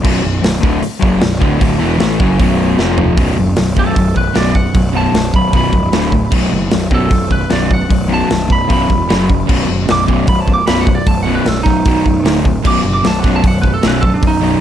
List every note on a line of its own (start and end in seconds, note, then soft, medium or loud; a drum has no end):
0.02 0.23 B0 loud
0.02 0.21 B1 loud
0.02 0.22 F#2 loud
0.02 0.24 B2 loud
0.02 kick loud
0.02 crash loud
0.22 0.42 B0 medium
0.22 0.39 B1 medium
0.22 0.39 F#2 medium
0.42 0.62 B0 medium
0.42 0.58 B1 medium
0.42 0.59 F#2 medium
0.42 snare loud
0.42 open hi-hat medium
0.60 0.81 D1 medium
0.60 0.80 D2 loud
0.60 0.81 A2 loud
0.60 0.82 D3 loud
0.60 kick loud
0.81 muted overdriven electric guitar stroke medium
0.81 muted picked electric bass stroke soft
0.81 open hi-hat medium
1.00 1.21 F#1 loud
1.00 1.19 F#2 loud
1.00 1.20 C#3 medium
1.00 1.21 F#3 loud
1.00 kick loud
1.20 1.41 B0 medium
1.20 1.37 B1 medium
1.20 1.37 F#2 medium
1.20 snare loud
1.20 open hi-hat medium
1.39 1.60 D1 loud
1.39 1.58 D2 medium
1.39 1.59 A2 medium
1.39 1.60 D3 loud
1.39 kick loud
1.59 1.79 D1 loud
1.59 1.78 D2 medium
1.59 1.78 A2 loud
1.59 1.79 D3 loud
1.59 kick loud
1.59 open hi-hat medium
1.78 1.99 E1 loud
1.78 1.98 E2 loud
1.78 1.98 B2 loud
1.78 1.97 E3 loud
1.98 2.19 A1 loud
1.98 2.18 A2 medium
1.98 2.18 E3 loud
1.98 2.19 A3 loud
1.98 snare loud
1.98 open hi-hat medium
2.19 2.38 F#1 medium
2.19 2.38 F#2 medium
2.19 2.39 C#3 loud
2.19 2.39 F#3 medium
2.19 kick loud
2.39 2.76 B0 loud
2.39 2.78 B1 medium
2.39 2.78 F#2 loud
2.39 2.78 B2 loud
2.39 kick loud
2.39 open hi-hat medium
2.79 3.15 F1 medium
2.79 3.18 F2 medium
2.79 3.18 C3 loud
2.79 3.18 F3 loud
2.79 snare medium
2.98 floor tom loud
3.17 3.33 B0 medium
3.17 3.37 B1 medium
3.17 3.37 F#2 medium
3.17 3.37 B2 loud
3.17 kick loud
3.17 open hi-hat medium
3.38 3.53 F#1 medium
3.38 3.56 B1 medium
3.38 3.56 F#2 medium
3.56 3.73 B0 medium
3.56 3.75 B1 medium
3.56 3.75 F#2 medium
3.56 snare loud
3.56 open hi-hat medium
3.76 3.92 B0 medium
3.76 3.96 B1 medium
3.76 3.96 F#2 loud
3.76 3.96 B2 loud
3.76 4.16 A4 medium
3.76 kick medium
3.96 4.28 B0 medium
3.96 4.15 B1 medium
3.96 4.15 F#2 medium
3.96 kick loud
3.96 open hi-hat medium
4.16 4.34 B1 medium
4.16 4.34 F#2 medium
4.16 4.36 B4 medium
4.16 kick medium
4.35 4.67 B0 medium
4.35 4.55 B1 medium
4.35 4.55 F#2 medium
4.35 4.55 B2 loud
4.35 4.55 D5 medium
4.35 snare loud
4.35 open hi-hat medium
4.55 4.73 B1 medium
4.55 4.74 F#2 medium
4.55 4.93 F#5 medium
4.55 kick medium
4.74 5.06 B0 loud
4.74 4.93 B1 medium
4.74 4.93 F#2 medium
4.74 kick loud
4.74 open hi-hat medium
4.94 5.13 B1 medium
4.94 5.13 F#2 loud
4.94 5.14 B2 loud
4.94 5.34 A5 medium
5.14 5.30 B0 loud
5.14 5.32 B1 medium
5.14 5.33 F#2 medium
5.14 snare loud
5.14 open hi-hat medium
5.32 5.49 B0 medium
5.32 5.51 B1 medium
5.32 5.54 B5 medium
5.32 kick medium
5.37 5.52 B1 medium
5.37 5.53 F#2 medium
5.53 5.69 B0 loud
5.53 5.72 B1 loud
5.53 5.73 F#2 medium
5.53 5.73 B2 medium
5.53 6.32 B5 loud
5.53 kick loud
5.53 open hi-hat medium
5.73 5.89 C#1 medium
5.73 5.92 B1 medium
5.73 5.92 F#2 medium
5.73 kick medium
5.92 6.24 D1 medium
5.92 6.12 D2 loud
5.92 6.12 A2 loud
5.92 6.12 D3 loud
5.92 snare loud
5.92 open hi-hat medium
6.12 6.31 D2 medium
6.12 6.31 A2 medium
6.12 kick medium
6.32 6.48 B0 loud
6.32 6.50 B1 medium
6.32 6.50 F#2 loud
6.32 6.52 B2 loud
6.32 kick loud
6.32 crash loud
6.51 6.68 F#1 medium
6.51 6.70 B1 medium
6.51 6.70 F#2 loud
6.71 6.88 B0 loud
6.71 6.89 B1 medium
6.71 6.90 F#2 medium
6.71 snare loud
6.71 open hi-hat medium
6.90 7.07 B0 medium
6.90 7.09 B1 medium
6.90 7.10 F#2 medium
6.90 7.10 B2 loud
6.90 kick medium
6.94 7.31 A4 loud
7.10 7.42 B0 loud
7.10 7.29 B1 medium
7.10 7.29 F#2 medium
7.10 kick loud
7.10 open hi-hat medium
7.30 7.49 B1 medium
7.30 7.49 F#2 medium
7.30 7.51 B4 medium
7.30 kick medium
7.50 7.82 B0 loud
7.50 7.68 B1 loud
7.50 7.68 F#2 loud
7.50 7.69 B2 loud
7.50 7.71 D5 medium
7.50 snare loud
7.50 open hi-hat medium
7.70 7.88 B1 medium
7.70 7.88 F#2 medium
7.70 8.11 F#5 medium
7.70 kick medium
7.89 8.22 B0 loud
7.89 8.07 B1 medium
7.89 8.07 F#2 medium
7.89 kick loud
7.89 open hi-hat medium
8.08 8.27 B1 loud
8.08 8.27 F#2 medium
8.08 8.29 B2 loud
8.14 8.50 A5 medium
8.28 8.46 B0 medium
8.28 8.47 B1 medium
8.28 8.47 F#2 medium
8.28 snare loud
8.28 open hi-hat medium
8.48 8.66 B0 medium
8.48 8.67 B1 medium
8.48 8.67 F#2 medium
8.48 kick medium
8.52 8.70 B5 medium
8.68 8.86 B0 loud
8.68 8.87 B1 medium
8.68 8.88 F#2 loud
8.68 8.88 B2 medium
8.68 kick loud
8.68 open hi-hat medium
8.73 9.48 B5 medium
8.89 9.05 E1 medium
8.89 9.08 B1 medium
8.89 9.08 F#2 medium
8.89 kick medium
9.10 9.42 F#1 medium
9.10 9.28 F#2 medium
9.10 9.28 C#3 medium
9.10 9.29 F#3 loud
9.10 snare loud
9.10 open hi-hat medium
9.29 9.47 F#2 medium
9.29 9.47 C#3 medium
9.29 kick medium
9.48 9.65 B0 loud
9.48 9.67 B1 medium
9.48 9.68 F#2 medium
9.48 9.68 B2 loud
9.48 kick loud
9.48 crash loud
9.68 9.84 F#1 medium
9.68 9.87 B1 medium
9.68 9.87 F#2 medium
9.86 10.05 B0 loud
9.86 10.04 B1 medium
9.86 10.05 F#2 medium
9.86 snare loud
9.86 open hi-hat medium
9.91 10.06 B1 medium
9.91 10.07 F#2 medium
9.91 10.03 D6 loud
10.08 10.24 B0 medium
10.08 10.27 B1 loud
10.08 10.27 F#2 medium
10.08 10.27 B2 loud
10.08 kick medium
10.27 10.59 B0 loud
10.27 10.46 B1 medium
10.27 10.46 F#2 medium
10.27 10.40 B5 loud
10.27 kick loud
10.27 open hi-hat medium
10.40 10.53 A5 loud
10.48 10.66 B1 medium
10.48 10.67 F#2 medium
10.48 kick medium
10.54 10.66 D6 loud
10.67 10.99 B0 medium
10.67 10.87 B1 medium
10.67 10.87 F#2 loud
10.67 10.87 B2 loud
10.67 10.80 B5 loud
10.67 snare loud
10.67 open hi-hat medium
10.81 10.94 F#5 loud
10.87 11.06 B1 medium
10.87 11.06 F#2 medium
10.87 kick medium
10.95 11.07 D5 medium
11.06 11.38 B0 medium
11.06 11.25 B1 medium
11.06 11.25 F#2 medium
11.06 11.20 A5 loud
11.06 kick loud
11.06 open hi-hat medium
11.23 11.34 F#5 medium
11.27 11.45 B1 medium
11.27 11.45 F#2 loud
11.27 11.46 B2 loud
11.35 11.48 B4 loud
11.46 11.62 B0 loud
11.46 11.64 B1 medium
11.46 11.64 F#2 medium
11.46 11.60 A4 loud
11.46 snare loud
11.46 open hi-hat medium
11.63 11.82 B0 medium
11.63 11.84 B1 medium
11.63 11.84 F#2 medium
11.63 12.38 D#4 loud
11.63 kick medium
11.63 snare soft
11.85 12.02 B0 loud
11.85 12.05 B1 medium
11.85 12.05 F#2 loud
11.85 12.05 B2 loud
11.85 kick loud
11.85 open hi-hat medium
12.06 12.21 B0 medium
12.06 12.24 B1 medium
12.06 12.24 F#2 medium
12.06 kick medium
12.25 12.57 D1 medium
12.25 12.45 D2 medium
12.25 12.45 A2 loud
12.25 12.45 D3 loud
12.25 snare loud
12.25 open hi-hat medium
12.45 12.64 D2 medium
12.45 12.64 A2 medium
12.45 kick medium
12.64 12.81 B0 medium
12.64 12.83 B1 medium
12.64 12.84 F#2 medium
12.64 12.84 B2 loud
12.64 12.79 D6 loud
12.64 kick loud
12.64 crash loud
12.84 13.00 F#1 loud
12.84 13.02 B1 medium
12.84 13.03 F#2 medium
12.94 13.05 D6 loud
13.04 13.20 B0 loud
13.04 13.22 B1 medium
13.04 13.22 F#2 medium
13.04 13.20 A5 loud
13.04 snare loud
13.04 open hi-hat medium
13.20 13.32 F#5 medium
13.20 kick loud
13.24 13.40 B0 medium
13.24 13.43 B1 loud
13.24 13.44 F#2 medium
13.24 13.44 B2 loud
13.24 snare soft
13.36 13.46 A5 loud
13.44 13.75 B0 loud
13.44 13.63 B1 medium
13.44 13.63 F#2 loud
13.44 13.59 F#5 loud
13.44 kick loud
13.44 open hi-hat medium
13.62 13.82 B1 medium
13.62 13.82 F#2 medium
13.62 13.72 B4 loud
13.62 kick medium
13.74 13.85 A4 medium
13.83 14.15 B0 loud
13.83 14.03 B1 loud
13.83 14.03 F#2 medium
13.83 14.03 B2 loud
13.83 snare loud
13.83 open hi-hat medium
13.88 13.98 B4 loud
14.01 14.22 B1 medium
14.01 14.22 F#2 medium
14.01 14.12 A4 loud
14.01 kick medium
14.14 14.25 D4 loud
14.23 14.54 B0 loud
14.23 14.41 B1 medium
14.23 14.41 F#2 medium
14.23 kick loud
14.23 open hi-hat medium
14.27 14.61 D#4 loud
14.42 14.61 B1 loud
14.42 14.61 F#2 loud
14.42 14.61 B2 loud